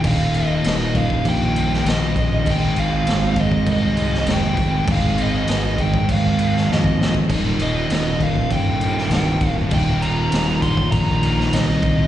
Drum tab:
CC |x-x-x-x-x-x-x-x-|x-x-x-x-x-x-x-x-|x-x-x-x-x-x-----|x-x-x-x-x-x-x-x-|
SD |----o------oo---|----o------oo---|----o------oo-o-|----o------oo---|
BD |o-----ooo-----o-|o-----ooo-----o-|o-----ooo----o-o|o-----ooo-----o-|

CC |x-x-x-x-x-x-x-x-|
SD |----o------oo---|
BD |o-----ooo-----o-|